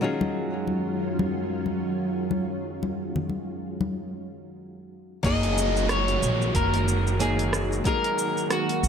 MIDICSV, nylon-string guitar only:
0, 0, Header, 1, 2, 480
1, 0, Start_track
1, 0, Key_signature, 6, "major"
1, 0, Tempo, 652174
1, 18, Time_signature, 4, 2, 24, 8
1, 6536, End_track
2, 0, Start_track
2, 0, Title_t, "Nylon-string guitar"
2, 0, Program_c, 0, 24
2, 6, Note_on_c, 0, 54, 63
2, 13, Note_on_c, 0, 61, 59
2, 16, Note_on_c, 0, 63, 58
2, 23, Note_on_c, 0, 65, 59
2, 30, Note_on_c, 0, 68, 72
2, 3828, Note_off_c, 0, 54, 0
2, 3831, Note_off_c, 0, 61, 0
2, 3833, Note_off_c, 0, 63, 0
2, 3837, Note_off_c, 0, 65, 0
2, 3840, Note_off_c, 0, 68, 0
2, 3848, Note_on_c, 0, 54, 98
2, 3858, Note_on_c, 0, 58, 85
2, 3865, Note_on_c, 0, 63, 85
2, 3873, Note_on_c, 0, 68, 107
2, 5269, Note_off_c, 0, 54, 0
2, 5274, Note_off_c, 0, 58, 0
2, 5277, Note_off_c, 0, 63, 0
2, 5281, Note_off_c, 0, 68, 0
2, 5295, Note_on_c, 0, 54, 79
2, 5300, Note_on_c, 0, 58, 69
2, 5303, Note_on_c, 0, 63, 69
2, 5307, Note_on_c, 0, 68, 89
2, 5752, Note_off_c, 0, 54, 0
2, 5755, Note_off_c, 0, 58, 0
2, 5757, Note_off_c, 0, 63, 0
2, 5758, Note_off_c, 0, 68, 0
2, 5771, Note_on_c, 0, 54, 79
2, 5780, Note_on_c, 0, 58, 70
2, 5786, Note_on_c, 0, 63, 79
2, 5796, Note_on_c, 0, 68, 82
2, 6536, Note_off_c, 0, 54, 0
2, 6536, Note_off_c, 0, 58, 0
2, 6536, Note_off_c, 0, 63, 0
2, 6536, Note_off_c, 0, 68, 0
2, 6536, End_track
0, 0, End_of_file